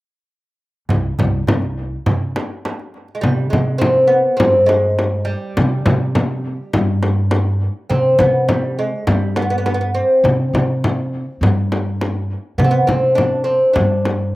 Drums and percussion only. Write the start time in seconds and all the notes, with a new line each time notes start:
0.89 darbuka dum, frame drum
1.19 darbuka dum, frame drum
1.47 darbuka dum, frame drum
1.62 darbuka ka
2.06 darbuka dum, frame drum
2.36 darbuka tek, frame drum
2.65 darbuka tek, frame drum
2.79 darbuka ka
2.94 darbuka ka
3.08 darbuka ka
3.23 frame drum
3.53 frame drum
3.81 frame drum
4.40 frame drum
4.69 frame drum
4.99 frame drum
5.57 frame drum
5.86 frame drum
6.15 frame drum
6.73 frame drum
7.03 frame drum
7.31 frame drum
7.90 frame drum
8.19 frame drum
8.49 frame drum
9.07 frame drum
9.36 frame drum
9.66 frame drum
10.25 frame drum
10.55 frame drum
10.84 frame drum
11.43 frame drum
11.72 frame drum
12.01 frame drum
12.60 frame drum
12.88 frame drum
13.18 frame drum
13.76 frame drum
14.05 frame drum